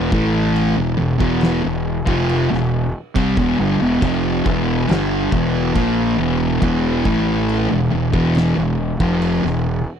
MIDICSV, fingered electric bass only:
0, 0, Header, 1, 2, 480
1, 0, Start_track
1, 0, Tempo, 865801
1, 1746, Time_signature, 4, 2, 24, 8
1, 5542, End_track
2, 0, Start_track
2, 0, Title_t, "Fingered electric bass"
2, 0, Program_c, 0, 33
2, 68, Note_on_c, 0, 33, 103
2, 405, Note_off_c, 0, 33, 0
2, 432, Note_on_c, 0, 28, 84
2, 540, Note_off_c, 0, 28, 0
2, 552, Note_on_c, 0, 28, 84
2, 661, Note_off_c, 0, 28, 0
2, 668, Note_on_c, 0, 28, 93
2, 890, Note_off_c, 0, 28, 0
2, 915, Note_on_c, 0, 28, 92
2, 1134, Note_off_c, 0, 28, 0
2, 1147, Note_on_c, 0, 29, 91
2, 1370, Note_off_c, 0, 29, 0
2, 1397, Note_on_c, 0, 28, 87
2, 1615, Note_off_c, 0, 28, 0
2, 1753, Note_on_c, 0, 36, 93
2, 1861, Note_off_c, 0, 36, 0
2, 1870, Note_on_c, 0, 28, 96
2, 1980, Note_off_c, 0, 28, 0
2, 1993, Note_on_c, 0, 31, 99
2, 2102, Note_off_c, 0, 31, 0
2, 2111, Note_on_c, 0, 28, 91
2, 2220, Note_off_c, 0, 28, 0
2, 2228, Note_on_c, 0, 29, 98
2, 2450, Note_off_c, 0, 29, 0
2, 2472, Note_on_c, 0, 28, 108
2, 2693, Note_off_c, 0, 28, 0
2, 2712, Note_on_c, 0, 31, 91
2, 2932, Note_off_c, 0, 31, 0
2, 2952, Note_on_c, 0, 28, 88
2, 3173, Note_off_c, 0, 28, 0
2, 3192, Note_on_c, 0, 34, 92
2, 3412, Note_off_c, 0, 34, 0
2, 3432, Note_on_c, 0, 28, 104
2, 3653, Note_off_c, 0, 28, 0
2, 3669, Note_on_c, 0, 28, 100
2, 3891, Note_off_c, 0, 28, 0
2, 3913, Note_on_c, 0, 33, 99
2, 4248, Note_off_c, 0, 33, 0
2, 4275, Note_on_c, 0, 28, 77
2, 4383, Note_off_c, 0, 28, 0
2, 4398, Note_on_c, 0, 28, 87
2, 4505, Note_off_c, 0, 28, 0
2, 4512, Note_on_c, 0, 28, 90
2, 4733, Note_off_c, 0, 28, 0
2, 4753, Note_on_c, 0, 28, 92
2, 4974, Note_off_c, 0, 28, 0
2, 4990, Note_on_c, 0, 29, 100
2, 5212, Note_off_c, 0, 29, 0
2, 5233, Note_on_c, 0, 28, 83
2, 5454, Note_off_c, 0, 28, 0
2, 5542, End_track
0, 0, End_of_file